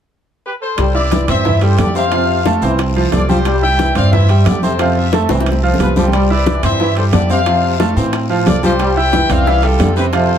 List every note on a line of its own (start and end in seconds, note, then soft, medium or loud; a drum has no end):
0.46 0.53 G4 medium
0.46 0.53 B4 medium
0.62 0.93 A4 medium
0.62 0.93 C5 medium
0.78 1.24 C2 medium
0.78 0.95 G3 medium
0.78 high bongo medium
0.78 high conga soft
0.78 high timbale medium
0.78 long guiro medium
0.95 1.22 E4 medium
0.95 1.27 B4 medium
0.95 1.26 D5 medium
0.95 1.22 E5 medium
0.95 1.22 E6 medium
0.95 high conga soft
1.11 1.50 E3 medium
1.11 high bongo medium
1.11 high conga medium
1.11 high timbale medium
1.11 low timbale medium
1.11 short guiro medium
1.28 1.75 G2 medium
1.28 1.42 C4 medium
1.28 1.42 C5 medium
1.28 1.60 C5 medium
1.28 1.60 E5 loud
1.28 1.42 C6 medium
1.28 high bongo soft
1.28 high conga soft
1.28 low conga medium
1.28 high timbale medium
1.28 short guiro medium
1.45 1.59 E3 medium
1.45 1.59 E4 medium
1.45 1.59 E5 medium
1.45 high bongo medium
1.45 high conga soft
1.45 low conga medium
1.45 long guiro medium
1.61 1.89 G3 medium
1.61 1.89 G4 medium
1.61 1.78 A4 medium
1.61 1.78 C5 medium
1.61 1.90 G5 medium
1.61 high bongo soft
1.61 high conga soft
1.61 high timbale medium
1.78 2.56 F2 medium
1.78 1.87 D3 medium
1.78 1.96 G4 medium
1.78 1.95 D5 medium
1.78 high bongo soft
1.78 low bongo medium
1.78 high conga medium
1.78 high timbale medium
1.78 low timbale medium
1.78 short guiro medium
1.94 2.03 C3 medium
1.94 2.09 C4 medium
1.94 2.09 C5 medium
1.94 2.59 C5 medium
1.94 2.58 F5 loud
1.94 2.09 C6 medium
1.94 high bongo soft
1.94 short guiro medium
2.11 2.38 C3 medium
2.11 2.39 F3 medium
2.11 2.40 F4 medium
2.11 2.40 F5 medium
2.11 high bongo medium
2.11 high conga soft
2.11 high timbale medium
2.11 long guiro medium
2.29 high conga soft
2.45 2.59 A3 medium
2.45 2.59 A4 medium
2.45 2.60 A5 medium
2.45 high bongo medium
2.45 high conga loud
2.45 high timbale medium
2.45 low timbale medium
2.45 short guiro medium
2.61 3.08 C2 medium
2.61 2.79 E3 medium
2.61 2.90 C4 medium
2.61 2.90 C5 medium
2.61 2.90 C6 medium
2.61 high bongo soft
2.61 high conga soft
2.61 short guiro medium
2.78 high bongo medium
2.78 high conga soft
2.78 high timbale medium
2.78 long guiro medium
2.95 3.13 F3 medium
2.95 3.23 F3 medium
2.95 3.23 F4 medium
2.95 3.23 F5 medium
2.95 high bongo soft
2.95 high conga soft
3.12 3.90 C2 medium
3.12 3.29 A4 medium
3.12 3.28 D5 medium
3.12 high bongo soft
3.12 low bongo medium
3.12 high conga medium
3.12 high timbale medium
3.12 low timbale medium
3.12 short guiro medium
3.28 3.37 F3 medium
3.28 3.56 G3 medium
3.28 3.56 G4 medium
3.28 3.61 G4 medium
3.28 3.60 C5 medium
3.28 3.57 G5 medium
3.28 high bongo soft
3.28 high conga medium
3.28 short guiro medium
3.45 3.63 G3 medium
3.45 high bongo medium
3.45 high conga soft
3.45 high timbale medium
3.45 long guiro medium
3.63 3.90 E4 medium
3.63 3.90 E5 medium
3.63 3.94 E5 medium
3.63 3.94 G5 loud
3.63 3.90 E6 medium
3.63 high conga soft
3.79 4.18 E3 medium
3.79 high bongo medium
3.79 high conga loud
3.79 high timbale medium
3.79 low timbale medium
3.79 short guiro medium
3.95 4.42 G2 medium
3.95 4.09 C4 medium
3.95 4.10 C5 medium
3.95 4.12 D5 medium
3.95 4.11 F5 loud
3.95 4.10 C6 medium
3.95 high bongo soft
3.95 high conga soft
3.95 low conga medium
3.95 high timbale medium
3.95 short guiro medium
4.12 4.26 E3 medium
4.12 4.26 E4 medium
4.12 4.44 C5 medium
4.12 4.43 E5 medium
4.12 4.27 E5 medium
4.12 high bongo medium
4.12 high conga soft
4.12 low conga medium
4.12 long guiro medium
4.29 4.57 G3 medium
4.29 4.57 G4 medium
4.29 4.57 G5 medium
4.29 high bongo soft
4.29 high conga soft
4.29 high timbale medium
4.46 5.24 F2 medium
4.46 4.55 D3 medium
4.46 4.64 G4 medium
4.46 4.63 D5 medium
4.46 high bongo soft
4.46 low bongo medium
4.46 high conga medium
4.46 high timbale medium
4.46 low timbale medium
4.46 short guiro medium
4.62 4.71 C3 medium
4.62 4.77 C4 medium
4.62 4.94 A4 medium
4.62 4.94 C5 medium
4.62 4.77 C5 medium
4.62 4.77 C6 medium
4.62 high bongo soft
4.62 high conga medium
4.62 short guiro medium
4.79 5.06 C3 medium
4.79 5.07 F3 medium
4.79 5.07 F4 medium
4.79 5.07 F5 medium
4.79 high bongo medium
4.79 high conga soft
4.79 high timbale loud
4.79 long guiro medium
4.96 5.30 C5 medium
4.96 5.30 E5 medium
4.96 high conga soft
5.13 5.27 A3 medium
5.13 5.27 A4 medium
5.13 5.27 A5 medium
5.13 high bongo medium
5.13 high conga medium
5.13 high timbale medium
5.13 low timbale medium
5.13 short guiro medium
5.29 5.76 C2 medium
5.29 5.47 E3 medium
5.29 5.57 C4 medium
5.29 5.57 C5 medium
5.29 5.57 C6 medium
5.29 high bongo loud
5.29 short guiro medium
5.40 high bongo medium
5.46 high conga soft
5.46 high timbale medium
5.46 long guiro medium
5.52 high bongo medium
5.63 5.80 F3 medium
5.63 5.90 F3 medium
5.63 5.91 F4 medium
5.63 5.91 F5 medium
5.63 high conga soft
5.74 low bongo medium
5.79 6.57 C2 medium
5.79 5.96 F4 medium
5.79 5.96 B4 medium
5.79 high conga medium
5.79 high timbale medium
5.79 low timbale medium
5.79 short guiro medium
5.85 low bongo medium
5.96 6.05 F3 medium
5.96 6.24 G3 medium
5.96 6.30 G4 medium
5.96 6.24 G4 medium
5.96 6.30 C5 medium
5.96 6.24 G5 medium
5.96 low bongo medium
5.96 high conga medium
5.96 short guiro medium
6.08 low bongo medium
6.12 6.31 G3 medium
6.12 high bongo medium
6.12 high timbale medium
6.12 long guiro medium
6.30 6.57 E4 medium
6.30 6.61 B4 medium
6.30 6.61 D5 medium
6.30 6.57 E5 medium
6.30 6.58 E6 medium
6.30 high conga soft
6.46 6.85 E3 medium
6.46 high bongo medium
6.46 high conga loud
6.46 high timbale medium
6.46 low timbale medium
6.46 short guiro medium
6.63 7.09 G2 medium
6.63 6.77 C4 medium
6.63 6.94 C5 medium
6.63 6.77 C5 medium
6.63 6.94 E5 loud
6.63 6.77 C6 medium
6.63 high bongo soft
6.63 high conga soft
6.63 low conga medium
6.63 high timbale medium
6.63 short guiro medium
6.80 6.94 E3 medium
6.80 6.94 E4 medium
6.80 6.94 E5 medium
6.80 high bongo medium
6.80 high conga soft
6.80 long guiro medium
6.96 7.24 G3 medium
6.96 7.24 G4 medium
6.96 7.05 A4 medium
6.96 7.04 C5 medium
6.96 7.25 G5 medium
6.96 high bongo soft
6.96 high conga soft
6.96 high timbale medium
7.13 7.91 F2 medium
7.13 7.22 D3 medium
7.13 7.29 G4 medium
7.13 7.29 D5 medium
7.13 high bongo soft
7.13 low bongo medium
7.13 high conga medium
7.13 high timbale medium
7.13 low timbale medium
7.13 short guiro medium
7.30 7.39 C3 medium
7.30 7.44 C4 medium
7.30 7.44 C5 medium
7.30 7.93 C5 medium
7.30 7.93 F5 loud
7.30 7.44 C6 medium
7.30 high bongo soft
7.30 high conga medium
7.30 short guiro medium
7.46 7.73 C3 medium
7.46 7.74 F3 medium
7.46 7.74 F4 medium
7.46 7.74 F5 medium
7.46 high bongo medium
7.46 high conga soft
7.46 high timbale medium
7.46 long guiro medium
7.63 high conga soft
7.80 7.93 A3 medium
7.80 7.94 A4 medium
7.80 7.94 A5 medium
7.80 high bongo medium
7.80 high conga medium
7.80 high timbale medium
7.80 low timbale medium
7.80 short guiro medium
7.96 8.43 A2 medium
7.96 8.14 E3 medium
7.96 8.24 C4 medium
7.96 8.24 C5 medium
7.96 8.24 C6 medium
7.96 high bongo soft
7.96 high conga soft
7.96 short guiro medium
8.13 high bongo medium
8.13 high conga soft
8.13 high timbale medium
8.13 long guiro medium
8.29 8.47 F3 medium
8.29 8.57 F3 medium
8.29 8.57 F4 medium
8.29 8.57 F5 medium
8.29 high bongo soft
8.29 high conga soft
8.46 9.24 C2 medium
8.46 8.63 A4 medium
8.46 8.63 D5 medium
8.46 high bongo soft
8.46 low bongo medium
8.46 high conga medium
8.46 high timbale medium
8.46 low timbale medium
8.46 short guiro medium
8.63 8.72 F3 medium
8.63 8.90 G3 medium
8.63 8.91 G4 medium
8.63 8.95 G4 medium
8.63 8.95 C5 medium
8.63 8.91 G5 medium
8.63 high bongo soft
8.63 high conga medium
8.63 short guiro medium
8.79 8.97 G3 medium
8.79 high bongo medium
8.79 high conga soft
8.79 high timbale medium
8.79 long guiro medium
8.97 9.24 E4 medium
8.97 9.24 E5 medium
8.97 9.30 E5 medium
8.97 9.30 G5 loud
8.97 9.24 E6 medium
8.97 high conga soft
9.13 9.52 E3 medium
9.13 high bongo medium
9.13 high conga loud
9.13 high timbale medium
9.13 low timbale medium
9.13 short guiro medium
9.29 9.76 C2 medium
9.29 9.44 C4 medium
9.29 9.44 C5 medium
9.29 9.64 D5 medium
9.29 9.64 F5 loud
9.29 9.44 C6 medium
9.29 high bongo soft
9.29 high conga soft
9.29 low conga medium
9.29 high timbale medium
9.29 short guiro medium
9.46 9.60 E3 medium
9.46 9.61 E4 medium
9.46 9.61 E5 medium
9.46 high bongo medium
9.46 high conga soft
9.46 long guiro medium
9.63 9.91 G3 medium
9.63 9.97 F4 medium
9.63 9.91 G4 medium
9.63 9.97 A4 medium
9.63 9.91 G5 medium
9.63 high bongo soft
9.63 high conga soft
9.63 high timbale medium
9.79 10.38 F2 medium
9.79 9.89 D3 medium
9.79 high bongo soft
9.79 low bongo medium
9.79 high conga medium
9.79 high timbale medium
9.79 low timbale medium
9.79 short guiro medium
9.96 10.06 C3 medium
9.96 10.10 C4 medium
9.96 10.04 G4 medium
9.96 10.04 B4 medium
9.96 10.10 C5 medium
9.96 10.11 C6 medium
9.96 high bongo soft
9.96 short guiro medium
10.13 10.38 C3 medium
10.13 10.38 F3 medium
10.13 10.38 F4 medium
10.13 10.38 A4 medium
10.13 10.38 C5 medium
10.13 10.38 F5 medium
10.13 high bongo medium
10.13 high conga soft
10.13 high timbale medium
10.13 long guiro medium
10.30 high conga soft